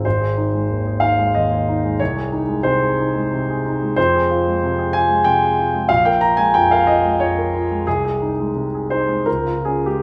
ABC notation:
X:1
M:3/4
L:1/16
Q:1/4=92
K:Ab
V:1 name="Grand piano"
c6 f2 e4 | d4 c6 z2 | [K:Bbdor] c6 a2 g4 | f g b a g f e2 d4 |
A6 c2 B2 A G |]
V:2 name="Grand piano"
A,,, A E A, E,, A E A, E,, A E A, | C,, A E A, C, A E A, C, A E A, | [K:Bbdor] F,, A F A, C, A F A, C, A F A, | B,,, B F A, F,, B F A, F,, B F A, |
C,, A E A, C, A E A, D,, F D A, |]